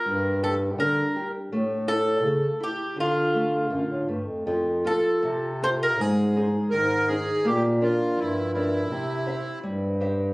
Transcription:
Already playing: twelve-string acoustic guitar A#4
0.05 bass clarinet G2, nylon-string guitar G3
0.43 nylon-string guitar G4, twelve-string acoustic guitar A4
0.78 bass clarinet D3, nylon-string guitar D4, twelve-string acoustic guitar A#4
1.16 nylon-string guitar G4
1.51 bass clarinet A2, nylon-string guitar A3
1.88 nylon-string guitar E4, twelve-string acoustic guitar A4
2.23 bass clarinet C#3, nylon-string guitar A3
2.60 nylon-string guitar E4, twelve-string acoustic guitar G4
2.96 nylon-string guitar D3, bass clarinet D3
3.00 twelve-string acoustic guitar F4
3.34 nylon-string guitar A3
3.70 bass clarinet F#2, nylon-string guitar D3
3.89 bass clarinet A2
4.08 bass clarinet G2, nylon-string guitar A3
4.26 bass clarinet F2
4.45 bass clarinet F2, nylon-string guitar F3
4.84 nylon-string guitar C4 F4 A4, twelve-string acoustic guitar A4
5.22 bass clarinet C3, nylon-string guitar C3
5.62 nylon-string guitar C4 F4 A4, twelve-string acoustic guitar C5
5.83 twelve-string acoustic guitar A#4
5.97 bass clarinet G#2, nylon-string guitar G#3
6.01 twelve-string acoustic guitar G#4
6.36 nylon-string guitar D#4 G#4 C5
6.70 bass clarinet G#2, nylon-string guitar D#3, accordion A#4
7.08 nylon-string guitar D#4 G#4 C5, accordion G#4
7.45 bass clarinet A#2, nylon-string guitar A#3, accordion G4
7.81 nylon-string guitar D4 A#4 D5, accordion F4
8.17 bass clarinet G2, nylon-string guitar F3, accordion E4
8.53 nylon-string guitar D4 A#4 D5, accordion E4
8.90 bass clarinet C3, nylon-string guitar C4
9.26 nylon-string guitar G4 C5 E5
9.63 bass clarinet G2, nylon-string guitar G3
10.00 nylon-string guitar G4 C5 E5

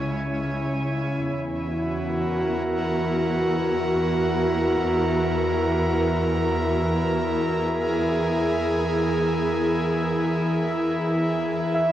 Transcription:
Already playing: cello section C#2, analog synth pad C#3 C#4 E4 C#5, synth texture G#5
1.26 cello section E2, analog synth pad E3, synth drone E3, synth texture E4
1.61 analog synth pad F#4
1.97 analog synth pad A#4
7.40 analog synth pad G#4
11.74 cello section E2, soft synth lead E5

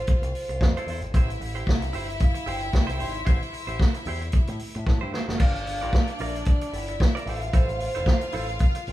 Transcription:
Already playing: violin section F4 F5, vibraphone C5
0.07 muted clean electric guitar stroke, kick, closed hi-hat
0.22 picked electric bass C2, muted clean electric guitar stroke, closed hi-hat
0.35 open hi-hat
0.49 picked electric bass C2, muted clean electric guitar stroke, closed hi-hat
0.61 picked electric bass F2, muted clean electric guitar stroke, kick, snare
0.77 clean electric guitar E4 A4 C5, closed hi-hat
0.86 picked electric bass E2, clean electric guitar E4 A4 C5, open hi-hat
1.01 picked electric bass G#1, muted clean electric guitar stroke, closed hi-hat
1.13 picked electric bass A1, violin section E4 E5, clean electric guitar E4 G4 C5, kick, closed hi-hat
1.30 muted clean electric guitar stroke, closed hi-hat
1.40 picked electric bass A1, muted clean electric guitar stroke, open hi-hat
1.55 clean electric guitar E4 G4 C5, closed hi-hat
1.67 picked electric bass C2, kick, snare
1.82 muted clean electric guitar stroke, closed hi-hat
1.93 picked electric bass G1, clean electric guitar E4 G4 C5, vibraphone E5, open hi-hat
2.09 muted clean electric guitar stroke, closed hi-hat
2.20 vibraphone F5, kick, closed hi-hat
2.35 muted clean electric guitar stroke, closed hi-hat
2.46 picked electric bass G1, clean electric guitar E4 G4 C5, vibraphone G5, open hi-hat
2.61 muted clean electric guitar stroke, closed hi-hat
2.72 picked electric bass C2, muted clean electric guitar stroke, kick, snare
2.87 clean electric guitar E4 G4 C5, closed hi-hat
2.99 picked electric bass G#1, clean electric guitar E4 G4 C5, vibraphone C6, open hi-hat
3.13 muted clean electric guitar stroke, closed hi-hat
3.25 picked electric bass A1, clean electric guitar E4 G4 C5, kick, closed hi-hat
3.41 muted clean electric guitar stroke, closed hi-hat
3.53 muted clean electric guitar stroke, open hi-hat
3.67 picked electric bass A1, clean electric guitar E4 G4 C5, closed hi-hat
3.80 kick, snare
3.94 muted clean electric guitar stroke, closed hi-hat
4.05 picked electric bass E2, clean electric guitar E4 G4 C5, open hi-hat
4.22 muted clean electric guitar stroke, closed hi-hat
4.32 muted clean electric guitar stroke, kick, closed hi-hat
4.47 picked electric bass A2, muted clean electric guitar stroke, closed hi-hat
4.59 open hi-hat
4.74 picked electric bass A2, muted clean electric guitar stroke, closed hi-hat
4.87 picked electric bass A2, muted clean electric guitar stroke, kick, snare
5.01 picked electric bass G2, clean electric guitar E4 G4 C5
5.12 clean electric guitar E4 G4 C5, snare
5.28 picked electric bass F#1, snare
5.38 picked electric bass G1, violin section D4 D5, clean electric guitar F4 A#4 D5, vibraphone F5, kick, crash
5.54 muted clean electric guitar stroke, closed hi-hat
5.66 muted clean electric guitar stroke, open hi-hat
5.81 picked electric bass A1, clean electric guitar F4 A#4 D5, closed hi-hat
5.93 kick, snare
6.07 muted clean electric guitar stroke, closed hi-hat
6.19 picked electric bass A#1, clean electric guitar F4 A#4 D5, vibraphone E5, open hi-hat
6.35 muted clean electric guitar stroke, closed hi-hat
6.45 vibraphone D5, muted clean electric guitar stroke, kick, closed hi-hat
6.61 muted clean electric guitar stroke, closed hi-hat
6.73 picked electric bass G1, violin section E4 E5, open hi-hat
6.88 muted clean electric guitar stroke, closed hi-hat
7.00 muted clean electric guitar stroke, kick, snare
7.15 clean electric guitar F4 A#4 D5, closed hi-hat
7.26 picked electric bass A1, clean electric guitar E4 A4 C5, violin section F4 F5, vibraphone E5, open hi-hat
7.42 muted clean electric guitar stroke, closed hi-hat
7.53 picked electric bass A1, clean electric guitar E4 A4 C5, vibraphone C5, kick, closed hi-hat
7.69 muted clean electric guitar stroke, closed hi-hat
7.80 muted clean electric guitar stroke, open hi-hat
7.95 picked electric bass F1, clean electric guitar E4 A4 C5, closed hi-hat
8.06 kick, snare
8.21 muted clean electric guitar stroke, closed hi-hat
8.32 picked electric bass A1, clean electric guitar E4 A4 C5, open hi-hat
8.48 muted clean electric guitar stroke, closed hi-hat
8.59 muted clean electric guitar stroke, kick, closed hi-hat
8.75 muted clean electric guitar stroke, closed hi-hat
8.87 picked electric bass A1, open hi-hat

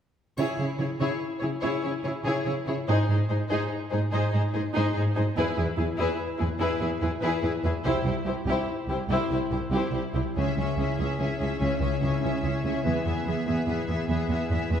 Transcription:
0.37 cello section C#3, viola section E4, violin section G#4 C#5, triangle
0.58 cello section C#3, viola section E4, violin section G#4 C#5
0.78 cello section C#3, viola section E4, violin section G#4 C#5
0.99 cello section C#3, viola section E4, violin section G#4 C#5
1.40 cello section C#3, viola section E4, violin section G#4 C#5
1.61 cello section C#3, viola section E4, violin section G#4 C#5
1.83 cello section C#3, viola section E4, violin section G#4 C#5
2.03 cello section C#3, viola section E4, violin section G#4 C#5
2.25 cello section C#3, viola section E4, violin section G#4 C#5
2.45 cello section C#3, viola section E4, violin section G#4 C#5
2.66 cello section C#3, viola section E4, violin section G#4 C#5
2.87 cello section G#2, viola section D#4, violin section G#4 C5
3.09 cello section G#2, viola section D#4, violin section G#4 C5
3.29 cello section G#2, viola section D#4, violin section G#4 C5
3.49 cello section G#2, viola section D#4, violin section G#4 C5
3.90 cello section G#2, viola section D#4, violin section G#4 C5
4.12 cello section G#2, viola section D#4, violin section G#4 C5
4.33 cello section G#2, viola section D#4, violin section G#4 C5
4.54 cello section G#2, viola section D#4, violin section G#4 C5
4.74 cello section G#2, viola section D#4, violin section G#4 C5
4.94 cello section G#2, viola section D#4, violin section G#4 C5
5.15 cello section G#2, viola section D#4, violin section G#4 C5
5.37 cello section E2, viola section E4, violin section G#4 B4
5.57 cello section E2, viola section E4, violin section G#4 B4
5.77 cello section E2, viola section E4, violin section G#4 B4
5.98 cello section E2, viola section E4, violin section G#4 B4
6.39 cello section E2, viola section E4, violin section G#4 B4
6.59 cello section E2, viola section E4, violin section G#4 B4
6.80 cello section E2, viola section E4, violin section G#4 B4
7.01 cello section E2, viola section E4, violin section G#4 B4
7.22 cello section E2, viola section E4, violin section G#4 B4
7.42 cello section E2, viola section E4, violin section G#4 B4
7.63 cello section E2, viola section E4, violin section G#4 B4
7.84 cello section C2, viola section E4, violin section G4 C5
8.05 cello section C2, viola section E4, violin section G4 C5
8.26 cello section C2, viola section E4, violin section G4 C5
8.46 cello section C2, viola section E4, violin section G4 C5
8.88 cello section C2, viola section E4, violin section G4 C5
9.09 cello section C2, viola section E4, violin section G4 C5
9.31 cello section C2, viola section E4, violin section G4 C5
9.50 cello section C2, viola section E4, violin section G4 C5
9.71 cello section C2, viola section E4, violin section G4
9.75 violin section C5
9.92 cello section C2, viola section E4, violin section G4 C5
10.14 cello section C2, viola section E4, violin section G4 C5
10.35 cello section C#2, harp C#3, viola section C#4, violin section G#4 E5
10.56 cello section C#2, harp G#3, viola section C#4, violin section G#4 E5
10.77 cello section C#2, viola section C#4, harp E4, violin section G#4 E5
10.98 cello section C#2, viola section C#4, violin section G#4 E5, harp G#4
11.18 cello section C#2, viola section C#4, violin section G#4 E5, harp C#5
11.39 cello section C#2, viola section C#4, violin section G#4 E5, harp G#4
11.59 cello section C#2, harp C#3, viola section C#4, violin section G#4 E5
11.81 cello section C#2, harp G#3, viola section C#4, violin section G#4 E5
12.01 cello section C#2, viola section C#4, harp E4, violin section G#4 E5
12.22 cello section C#2, viola section C#4, violin section G#4 E5, harp G#4
12.42 cello section C#2, viola section C#4, violin section G#4 E5, harp C#5
12.64 cello section C#2, viola section C#4, violin section G#4 E5, harp G#4
12.85 cello section E2, harp E3, viola section B3, violin section G#4 E5
13.05 cello section E2, harp B3, viola section B3, violin section G#4 E5
13.26 cello section E2, viola section B3, harp E4, violin section G#4 E5
13.47 cello section E2, viola section B3, violin section G#4 E5, harp G#4
13.67 cello section E2, viola section B3, violin section G#4 E5, harp B4
13.87 cello section E2, viola section B3, violin section G#4 E5, harp G#4
14.08 cello section E2, harp E3, viola section B3, violin section G#4 E5
14.29 cello section E2, viola section B3, harp B3, violin section G#4 E5
14.50 cello section E2, viola section B3, harp E4, violin section G#4 E5
14.71 cello section E2, viola section B3, violin section G#4 E5, harp G#4

